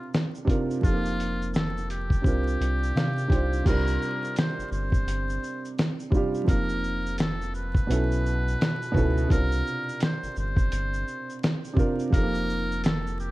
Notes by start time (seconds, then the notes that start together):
Already playing: D4 F4 A#4
0.14 snare, shaker
0.35 shaker
0.45 C3 C4 D4, kick
0.49 F4 A#4, closed hi-hat, shaker
0.70 shaker
0.81 F1 F3 C4 D#4 F4, kick, shaker
0.85 G4 A4
0.93 A#3
1.05 shaker
1.20 closed hi-hat, shaker
1.42 shaker
1.54 A4, snare, shaker
1.77 shaker
1.90 G4, closed hi-hat, shaker
2.10 kick, shaker
2.22 C2 C3 C4 D4, kick, shaker
2.27 F4 A#4
2.47 shaker
2.60 C2, closed hi-hat, shaker
2.83 shaker
2.95 C3 F5, snare, shaker
3.18 shaker
3.28 C2 C3 C4 D4 G5, kick, closed hi-hat, shaker
3.33 F4 C5
3.53 shaker
3.64 C2 C3 G3 D4 A#4, kick, closed hi-hat, crash, shaker
3.69 F4 A#4
3.87 shaker
4.02 shaker
4.24 shaker
4.36 C5, snare, closed hi-hat, shaker
4.58 G1, shaker
4.71 G1 C5, shaker
4.92 kick, shaker
5.06 G1, closed hi-hat, shaker
5.30 shaker
5.44 shaker
5.65 shaker
5.79 snare, closed hi-hat, shaker
6.00 shaker
6.10 C3 G3 D4, kick, shaker
6.15 F4 G4
6.35 shaker
6.44 F3 C4 D#4, kick
6.48 F1 A#3 G4 A#4, closed hi-hat, shaker
6.69 shaker
6.84 shaker
7.06 shaker
7.18 A4, snare, closed hi-hat, shaker
7.41 shaker
7.54 B4, shaker
7.75 kick, shaker
7.87 B1 B2 B3 C#4, closed hi-hat, shaker
7.91 E4 A4
8.12 shaker
8.26 shaker
8.48 shaker
8.61 snare, closed hi-hat, shaker
8.82 shaker
8.92 C#2 B2 B3 C#4, kick
8.96 E4 A4, shaker
9.17 shaker
9.27 C2 C3 C4 D4, kick
9.31 F4 A#4, closed hi-hat, shaker
9.52 shaker
9.67 shaker
9.89 shaker
10.00 C5, snare, closed hi-hat, shaker
10.23 G1, shaker
10.36 G1 C5, shaker
10.57 kick, shaker
10.72 G1, closed hi-hat, shaker
10.93 shaker
11.08 shaker
11.30 shaker
11.43 snare, closed hi-hat, shaker
11.64 shaker
11.74 C3 C4 D4, kick
11.78 F4 A#4, shaker
11.99 shaker
12.10 F1 F3 C4 D#4 A#4, kick, closed hi-hat, shaker
12.15 G4 A4
12.23 A#3
12.34 shaker
12.50 shaker
12.72 shaker
12.84 A4, snare, closed hi-hat, shaker
13.07 shaker
13.20 G4, shaker